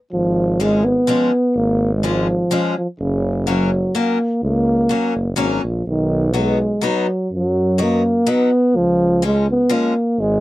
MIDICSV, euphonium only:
0, 0, Header, 1, 2, 480
1, 0, Start_track
1, 0, Key_signature, 5, "major"
1, 0, Tempo, 479233
1, 116, Time_signature, 3, 2, 24, 8
1, 10419, End_track
2, 0, Start_track
2, 0, Title_t, "Euphonium"
2, 0, Program_c, 0, 58
2, 127, Note_on_c, 0, 53, 93
2, 614, Note_on_c, 0, 56, 99
2, 629, Note_off_c, 0, 53, 0
2, 847, Note_on_c, 0, 59, 94
2, 862, Note_off_c, 0, 56, 0
2, 1568, Note_on_c, 0, 58, 103
2, 1583, Note_off_c, 0, 59, 0
2, 1927, Note_off_c, 0, 58, 0
2, 1947, Note_on_c, 0, 56, 83
2, 2055, Note_on_c, 0, 53, 94
2, 2070, Note_off_c, 0, 56, 0
2, 2772, Note_off_c, 0, 53, 0
2, 2783, Note_on_c, 0, 53, 75
2, 2882, Note_off_c, 0, 53, 0
2, 3006, Note_on_c, 0, 49, 94
2, 3446, Note_off_c, 0, 49, 0
2, 3489, Note_on_c, 0, 54, 90
2, 3964, Note_on_c, 0, 58, 84
2, 3979, Note_off_c, 0, 54, 0
2, 4439, Note_off_c, 0, 58, 0
2, 4446, Note_on_c, 0, 58, 100
2, 5337, Note_off_c, 0, 58, 0
2, 5659, Note_on_c, 0, 53, 62
2, 5870, Note_off_c, 0, 53, 0
2, 5899, Note_on_c, 0, 51, 88
2, 6382, Note_on_c, 0, 56, 91
2, 6397, Note_off_c, 0, 51, 0
2, 6856, Note_off_c, 0, 56, 0
2, 6864, Note_on_c, 0, 54, 77
2, 7303, Note_off_c, 0, 54, 0
2, 7360, Note_on_c, 0, 54, 94
2, 7839, Note_on_c, 0, 58, 92
2, 7854, Note_off_c, 0, 54, 0
2, 8314, Note_on_c, 0, 59, 101
2, 8329, Note_off_c, 0, 58, 0
2, 8778, Note_on_c, 0, 53, 117
2, 8793, Note_off_c, 0, 59, 0
2, 9250, Note_off_c, 0, 53, 0
2, 9272, Note_on_c, 0, 56, 95
2, 9490, Note_off_c, 0, 56, 0
2, 9523, Note_on_c, 0, 59, 93
2, 9744, Note_on_c, 0, 58, 86
2, 9759, Note_off_c, 0, 59, 0
2, 10218, Note_on_c, 0, 56, 103
2, 10233, Note_off_c, 0, 58, 0
2, 10419, Note_off_c, 0, 56, 0
2, 10419, End_track
0, 0, End_of_file